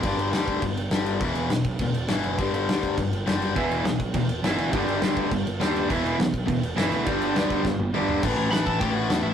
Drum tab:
CC |xxxxxxxx|xxxxxxxx|xxxxxxxx|xxxxxxxx|
SD |--o---o-|--o---o-|--o---o-|--o---o-|
T1 |--------|--------|--------|--------|
T2 |--------|--------|--------|--------|
FT |--------|--------|--------|--------|
BD |o--oo---|o--oo---|o--oo---|o--oo---|

CC |xxxxxxxx|xxxxxxxx|xxxx----|x-x-x-x-|
SD |--o---o-|--o---o-|--o-o---|--o---o-|
T1 |--------|--------|-----o--|--------|
T2 |--------|--------|------o-|--------|
FT |--------|--------|-------o|--------|
BD |o--oo---|o--oo---|o--oo---|o--oo---|